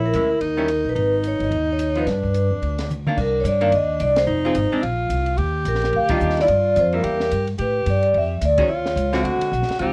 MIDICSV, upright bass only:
0, 0, Header, 1, 3, 480
1, 0, Start_track
1, 0, Tempo, 276116
1, 1685, Time_signature, 4, 2, 24, 8
1, 17261, End_track
2, 0, Start_track
2, 0, Title_t, "Upright bass"
2, 0, Program_c, 0, 32
2, 0, Note_on_c, 0, 34, 76
2, 198, Note_off_c, 0, 34, 0
2, 235, Note_on_c, 0, 38, 68
2, 686, Note_off_c, 0, 38, 0
2, 707, Note_on_c, 0, 39, 72
2, 1424, Note_off_c, 0, 39, 0
2, 1473, Note_on_c, 0, 34, 67
2, 1650, Note_off_c, 0, 34, 0
2, 1661, Note_on_c, 0, 32, 78
2, 2381, Note_off_c, 0, 32, 0
2, 2425, Note_on_c, 0, 31, 62
2, 2613, Note_off_c, 0, 31, 0
2, 2623, Note_on_c, 0, 39, 78
2, 3547, Note_off_c, 0, 39, 0
2, 3588, Note_on_c, 0, 43, 77
2, 4306, Note_off_c, 0, 43, 0
2, 4358, Note_on_c, 0, 41, 59
2, 4547, Note_off_c, 0, 41, 0
2, 4557, Note_on_c, 0, 38, 72
2, 5474, Note_off_c, 0, 38, 0
2, 5517, Note_on_c, 0, 36, 78
2, 5967, Note_off_c, 0, 36, 0
2, 5977, Note_on_c, 0, 43, 91
2, 6457, Note_off_c, 0, 43, 0
2, 6469, Note_on_c, 0, 39, 74
2, 6943, Note_off_c, 0, 39, 0
2, 6954, Note_on_c, 0, 36, 78
2, 7418, Note_off_c, 0, 36, 0
2, 7428, Note_on_c, 0, 29, 79
2, 7902, Note_off_c, 0, 29, 0
2, 7913, Note_on_c, 0, 32, 87
2, 8180, Note_off_c, 0, 32, 0
2, 8393, Note_on_c, 0, 34, 78
2, 8847, Note_off_c, 0, 34, 0
2, 8857, Note_on_c, 0, 36, 80
2, 9335, Note_off_c, 0, 36, 0
2, 9344, Note_on_c, 0, 39, 85
2, 9813, Note_off_c, 0, 39, 0
2, 9823, Note_on_c, 0, 34, 87
2, 10298, Note_off_c, 0, 34, 0
2, 10310, Note_on_c, 0, 38, 78
2, 10781, Note_off_c, 0, 38, 0
2, 10796, Note_on_c, 0, 39, 89
2, 11264, Note_off_c, 0, 39, 0
2, 11276, Note_on_c, 0, 43, 84
2, 11744, Note_off_c, 0, 43, 0
2, 11756, Note_on_c, 0, 41, 93
2, 12224, Note_off_c, 0, 41, 0
2, 12233, Note_on_c, 0, 40, 74
2, 12702, Note_off_c, 0, 40, 0
2, 12721, Note_on_c, 0, 43, 81
2, 13182, Note_off_c, 0, 43, 0
2, 13192, Note_on_c, 0, 45, 75
2, 13662, Note_off_c, 0, 45, 0
2, 13670, Note_on_c, 0, 43, 87
2, 14141, Note_off_c, 0, 43, 0
2, 14149, Note_on_c, 0, 41, 80
2, 14620, Note_off_c, 0, 41, 0
2, 14629, Note_on_c, 0, 38, 86
2, 15090, Note_off_c, 0, 38, 0
2, 15100, Note_on_c, 0, 39, 77
2, 15564, Note_off_c, 0, 39, 0
2, 15574, Note_on_c, 0, 37, 90
2, 16047, Note_off_c, 0, 37, 0
2, 16057, Note_on_c, 0, 38, 79
2, 16331, Note_off_c, 0, 38, 0
2, 16544, Note_on_c, 0, 35, 86
2, 16815, Note_off_c, 0, 35, 0
2, 17036, Note_on_c, 0, 37, 83
2, 17261, Note_off_c, 0, 37, 0
2, 17261, End_track
3, 0, Start_track
3, 0, Title_t, "Muted upright bass strokes"
3, 16356, Note_on_c, 9, 29, 36
3, 16530, Note_off_c, 9, 29, 0
3, 17261, End_track
0, 0, End_of_file